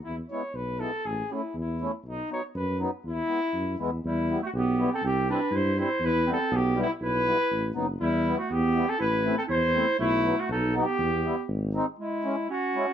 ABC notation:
X:1
M:2/4
L:1/16
Q:1/4=120
K:E
V:1 name="Flugelhorn"
E2 c2 B2 A2 | G2 E2 E3 z | D2 c2 B2 z2 | E6 z2 |
[K:Em] E3 F G3 A | G2 B2 c2 c2 | B2 A2 G2 E2 | B6 z2 |
E3 F G3 A | B3 A c4 | E3 F A2 G2- | G4 z4 |
[K:C#m] E4 F4 |]
V:2 name="Clarinet"
z8 | z8 | z8 | z8 |
[K:Em] G,3 A, B,3 C | C2 D2 E2 E2 | E2 C2 B,2 G,2 | E6 z2 |
G,3 A, B,3 C | E3 C E4 | A,3 A, ^D2 B,2- | B,4 z4 |
[K:C#m] G,4 C4 |]
V:3 name="Accordion"
z2 [G,B,E]2 z2 [G,B,E]2 | z2 [A,CE]2 z2 [A,CE]2 | z2 [F,B,D]2 z2 [F,B,D]2 | z2 [G,B,E]2 z2 [G,B,E]2 |
[K:Em] z2 [G,B,E]2 z2 [G,B,E]2 | z2 [G,CE]2 z2 [G,CE]2 | z2 [G,B,E]2 z2 [G,B,E]2 | z2 [G,B,E]2 z2 [F,B,^D]2 |
z2 [G,B,E]2 z2 [G,B,E]2 | z2 [A,CE]2 z2 [A,CE]2 | z2 [F,B,E]2 z2 [F,B,^D]2 | z2 [G,B,E]2 z2 [^G,^B,^D]2 |
[K:C#m] z2 [G,CE]2 z2 [G,CE]2 |]
V:4 name="Tuba" clef=bass
E,,2 z2 B,,,4 | A,,,2 z2 E,,4 | B,,,2 z2 F,,4 | E,,2 z2 F,,2 E,,2 |
[K:Em] E,,4 B,,,4 | C,,4 G,,4 | E,,4 B,,,4 | B,,,4 A,,,2 F,,,2 |
E,,4 E,,4 | A,,,4 E,,4 | B,,,4 B,,,4 | E,,4 ^G,,,4 |
[K:C#m] z8 |]